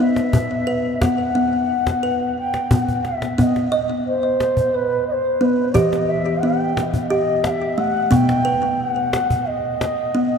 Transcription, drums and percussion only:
0, 0, Header, 1, 2, 480
1, 0, Start_track
1, 0, Tempo, 676437
1, 719, Time_signature, 7, 3, 24, 8
1, 7366, End_track
2, 0, Start_track
2, 0, Title_t, "Cajon"
2, 116, Note_on_c, 9, 38, 42
2, 187, Note_off_c, 9, 38, 0
2, 236, Note_on_c, 9, 36, 53
2, 307, Note_off_c, 9, 36, 0
2, 720, Note_on_c, 9, 36, 52
2, 720, Note_on_c, 9, 38, 50
2, 791, Note_off_c, 9, 36, 0
2, 791, Note_off_c, 9, 38, 0
2, 1325, Note_on_c, 9, 36, 42
2, 1325, Note_on_c, 9, 38, 42
2, 1396, Note_off_c, 9, 36, 0
2, 1396, Note_off_c, 9, 38, 0
2, 1561, Note_on_c, 9, 38, 16
2, 1632, Note_off_c, 9, 38, 0
2, 1801, Note_on_c, 9, 38, 42
2, 1872, Note_off_c, 9, 38, 0
2, 1922, Note_on_c, 9, 36, 55
2, 1992, Note_off_c, 9, 36, 0
2, 2047, Note_on_c, 9, 36, 28
2, 2118, Note_off_c, 9, 36, 0
2, 2162, Note_on_c, 9, 38, 33
2, 2232, Note_off_c, 9, 38, 0
2, 2285, Note_on_c, 9, 38, 41
2, 2356, Note_off_c, 9, 38, 0
2, 2406, Note_on_c, 9, 36, 38
2, 2477, Note_off_c, 9, 36, 0
2, 2526, Note_on_c, 9, 38, 32
2, 2597, Note_off_c, 9, 38, 0
2, 3125, Note_on_c, 9, 38, 43
2, 3196, Note_off_c, 9, 38, 0
2, 3242, Note_on_c, 9, 36, 36
2, 3313, Note_off_c, 9, 36, 0
2, 3724, Note_on_c, 9, 38, 13
2, 3795, Note_off_c, 9, 38, 0
2, 4082, Note_on_c, 9, 36, 44
2, 4153, Note_off_c, 9, 36, 0
2, 4206, Note_on_c, 9, 38, 36
2, 4277, Note_off_c, 9, 38, 0
2, 4805, Note_on_c, 9, 38, 52
2, 4876, Note_off_c, 9, 38, 0
2, 4922, Note_on_c, 9, 36, 37
2, 4993, Note_off_c, 9, 36, 0
2, 5280, Note_on_c, 9, 38, 47
2, 5351, Note_off_c, 9, 38, 0
2, 5399, Note_on_c, 9, 38, 15
2, 5470, Note_off_c, 9, 38, 0
2, 5762, Note_on_c, 9, 36, 45
2, 5833, Note_off_c, 9, 36, 0
2, 5882, Note_on_c, 9, 38, 38
2, 5953, Note_off_c, 9, 38, 0
2, 6480, Note_on_c, 9, 38, 50
2, 6551, Note_off_c, 9, 38, 0
2, 6602, Note_on_c, 9, 36, 40
2, 6673, Note_off_c, 9, 36, 0
2, 6962, Note_on_c, 9, 38, 50
2, 7033, Note_off_c, 9, 38, 0
2, 7084, Note_on_c, 9, 38, 14
2, 7154, Note_off_c, 9, 38, 0
2, 7366, End_track
0, 0, End_of_file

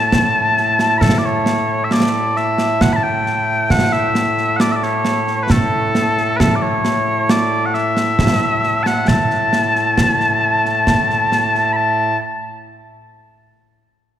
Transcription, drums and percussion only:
0, 0, Header, 1, 2, 480
1, 0, Start_track
1, 0, Key_signature, 3, "major"
1, 0, Tempo, 895522
1, 545, Time_signature, 3, 2, 24, 8
1, 7608, End_track
2, 0, Start_track
2, 0, Title_t, "Drums"
2, 66, Note_on_c, 9, 35, 59
2, 66, Note_on_c, 9, 38, 100
2, 120, Note_off_c, 9, 35, 0
2, 120, Note_off_c, 9, 38, 0
2, 307, Note_on_c, 9, 38, 27
2, 361, Note_off_c, 9, 38, 0
2, 425, Note_on_c, 9, 38, 74
2, 478, Note_off_c, 9, 38, 0
2, 542, Note_on_c, 9, 35, 62
2, 542, Note_on_c, 9, 38, 97
2, 596, Note_off_c, 9, 35, 0
2, 596, Note_off_c, 9, 38, 0
2, 783, Note_on_c, 9, 38, 78
2, 836, Note_off_c, 9, 38, 0
2, 1024, Note_on_c, 9, 38, 101
2, 1077, Note_off_c, 9, 38, 0
2, 1267, Note_on_c, 9, 38, 30
2, 1320, Note_off_c, 9, 38, 0
2, 1385, Note_on_c, 9, 38, 76
2, 1438, Note_off_c, 9, 38, 0
2, 1506, Note_on_c, 9, 35, 62
2, 1506, Note_on_c, 9, 38, 100
2, 1560, Note_off_c, 9, 35, 0
2, 1560, Note_off_c, 9, 38, 0
2, 1748, Note_on_c, 9, 38, 29
2, 1802, Note_off_c, 9, 38, 0
2, 1985, Note_on_c, 9, 35, 64
2, 1985, Note_on_c, 9, 38, 95
2, 2038, Note_off_c, 9, 35, 0
2, 2038, Note_off_c, 9, 38, 0
2, 2107, Note_on_c, 9, 38, 31
2, 2160, Note_off_c, 9, 38, 0
2, 2226, Note_on_c, 9, 38, 79
2, 2279, Note_off_c, 9, 38, 0
2, 2346, Note_on_c, 9, 38, 29
2, 2400, Note_off_c, 9, 38, 0
2, 2465, Note_on_c, 9, 38, 101
2, 2519, Note_off_c, 9, 38, 0
2, 2587, Note_on_c, 9, 38, 32
2, 2641, Note_off_c, 9, 38, 0
2, 2705, Note_on_c, 9, 38, 81
2, 2759, Note_off_c, 9, 38, 0
2, 2827, Note_on_c, 9, 38, 31
2, 2880, Note_off_c, 9, 38, 0
2, 2946, Note_on_c, 9, 35, 68
2, 2946, Note_on_c, 9, 38, 112
2, 3000, Note_off_c, 9, 35, 0
2, 3000, Note_off_c, 9, 38, 0
2, 3189, Note_on_c, 9, 38, 85
2, 3242, Note_off_c, 9, 38, 0
2, 3310, Note_on_c, 9, 38, 33
2, 3364, Note_off_c, 9, 38, 0
2, 3431, Note_on_c, 9, 35, 69
2, 3431, Note_on_c, 9, 38, 109
2, 3484, Note_off_c, 9, 35, 0
2, 3484, Note_off_c, 9, 38, 0
2, 3670, Note_on_c, 9, 38, 83
2, 3724, Note_off_c, 9, 38, 0
2, 3910, Note_on_c, 9, 38, 107
2, 3964, Note_off_c, 9, 38, 0
2, 4149, Note_on_c, 9, 38, 31
2, 4203, Note_off_c, 9, 38, 0
2, 4270, Note_on_c, 9, 38, 79
2, 4324, Note_off_c, 9, 38, 0
2, 4388, Note_on_c, 9, 35, 67
2, 4388, Note_on_c, 9, 38, 112
2, 4442, Note_off_c, 9, 35, 0
2, 4442, Note_off_c, 9, 38, 0
2, 4630, Note_on_c, 9, 38, 29
2, 4683, Note_off_c, 9, 38, 0
2, 4749, Note_on_c, 9, 38, 81
2, 4803, Note_off_c, 9, 38, 0
2, 4868, Note_on_c, 9, 35, 60
2, 4868, Note_on_c, 9, 38, 100
2, 4921, Note_off_c, 9, 35, 0
2, 4921, Note_off_c, 9, 38, 0
2, 4986, Note_on_c, 9, 38, 29
2, 5040, Note_off_c, 9, 38, 0
2, 5107, Note_on_c, 9, 38, 77
2, 5160, Note_off_c, 9, 38, 0
2, 5229, Note_on_c, 9, 38, 29
2, 5282, Note_off_c, 9, 38, 0
2, 5347, Note_on_c, 9, 35, 56
2, 5347, Note_on_c, 9, 38, 96
2, 5400, Note_off_c, 9, 35, 0
2, 5400, Note_off_c, 9, 38, 0
2, 5467, Note_on_c, 9, 38, 29
2, 5521, Note_off_c, 9, 38, 0
2, 5710, Note_on_c, 9, 38, 27
2, 5764, Note_off_c, 9, 38, 0
2, 5826, Note_on_c, 9, 35, 58
2, 5826, Note_on_c, 9, 38, 91
2, 5880, Note_off_c, 9, 35, 0
2, 5880, Note_off_c, 9, 38, 0
2, 5949, Note_on_c, 9, 38, 24
2, 6003, Note_off_c, 9, 38, 0
2, 6068, Note_on_c, 9, 38, 66
2, 6122, Note_off_c, 9, 38, 0
2, 6190, Note_on_c, 9, 38, 25
2, 6243, Note_off_c, 9, 38, 0
2, 7608, End_track
0, 0, End_of_file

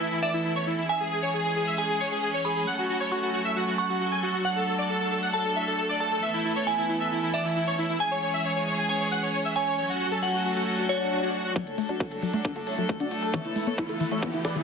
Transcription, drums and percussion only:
0, 0, Header, 1, 2, 480
1, 0, Start_track
1, 0, Key_signature, 3, "minor"
1, 0, Tempo, 444444
1, 963, Time_signature, 4, 2, 24, 8
1, 15800, End_track
2, 0, Start_track
2, 0, Title_t, "Drums"
2, 12483, Note_on_c, 9, 42, 79
2, 12484, Note_on_c, 9, 36, 107
2, 12591, Note_off_c, 9, 42, 0
2, 12592, Note_off_c, 9, 36, 0
2, 12604, Note_on_c, 9, 42, 53
2, 12712, Note_off_c, 9, 42, 0
2, 12724, Note_on_c, 9, 46, 97
2, 12832, Note_off_c, 9, 46, 0
2, 12843, Note_on_c, 9, 42, 51
2, 12951, Note_off_c, 9, 42, 0
2, 12963, Note_on_c, 9, 42, 76
2, 12964, Note_on_c, 9, 36, 101
2, 13071, Note_off_c, 9, 42, 0
2, 13072, Note_off_c, 9, 36, 0
2, 13083, Note_on_c, 9, 42, 52
2, 13191, Note_off_c, 9, 42, 0
2, 13202, Note_on_c, 9, 46, 98
2, 13310, Note_off_c, 9, 46, 0
2, 13323, Note_on_c, 9, 42, 55
2, 13431, Note_off_c, 9, 42, 0
2, 13443, Note_on_c, 9, 42, 78
2, 13444, Note_on_c, 9, 36, 115
2, 13551, Note_off_c, 9, 42, 0
2, 13552, Note_off_c, 9, 36, 0
2, 13563, Note_on_c, 9, 42, 52
2, 13671, Note_off_c, 9, 42, 0
2, 13683, Note_on_c, 9, 46, 94
2, 13791, Note_off_c, 9, 46, 0
2, 13803, Note_on_c, 9, 42, 53
2, 13911, Note_off_c, 9, 42, 0
2, 13923, Note_on_c, 9, 36, 107
2, 13923, Note_on_c, 9, 42, 73
2, 14031, Note_off_c, 9, 36, 0
2, 14031, Note_off_c, 9, 42, 0
2, 14042, Note_on_c, 9, 42, 62
2, 14150, Note_off_c, 9, 42, 0
2, 14163, Note_on_c, 9, 46, 102
2, 14271, Note_off_c, 9, 46, 0
2, 14283, Note_on_c, 9, 42, 51
2, 14391, Note_off_c, 9, 42, 0
2, 14403, Note_on_c, 9, 36, 114
2, 14404, Note_on_c, 9, 42, 78
2, 14511, Note_off_c, 9, 36, 0
2, 14512, Note_off_c, 9, 42, 0
2, 14523, Note_on_c, 9, 42, 51
2, 14631, Note_off_c, 9, 42, 0
2, 14643, Note_on_c, 9, 46, 104
2, 14751, Note_off_c, 9, 46, 0
2, 14762, Note_on_c, 9, 42, 52
2, 14870, Note_off_c, 9, 42, 0
2, 14883, Note_on_c, 9, 36, 110
2, 14883, Note_on_c, 9, 42, 80
2, 14991, Note_off_c, 9, 36, 0
2, 14991, Note_off_c, 9, 42, 0
2, 15004, Note_on_c, 9, 42, 52
2, 15112, Note_off_c, 9, 42, 0
2, 15123, Note_on_c, 9, 46, 105
2, 15231, Note_off_c, 9, 46, 0
2, 15243, Note_on_c, 9, 42, 51
2, 15351, Note_off_c, 9, 42, 0
2, 15363, Note_on_c, 9, 42, 79
2, 15364, Note_on_c, 9, 36, 113
2, 15471, Note_off_c, 9, 42, 0
2, 15472, Note_off_c, 9, 36, 0
2, 15483, Note_on_c, 9, 42, 52
2, 15591, Note_off_c, 9, 42, 0
2, 15604, Note_on_c, 9, 36, 63
2, 15604, Note_on_c, 9, 46, 102
2, 15712, Note_off_c, 9, 36, 0
2, 15712, Note_off_c, 9, 46, 0
2, 15724, Note_on_c, 9, 42, 53
2, 15800, Note_off_c, 9, 42, 0
2, 15800, End_track
0, 0, End_of_file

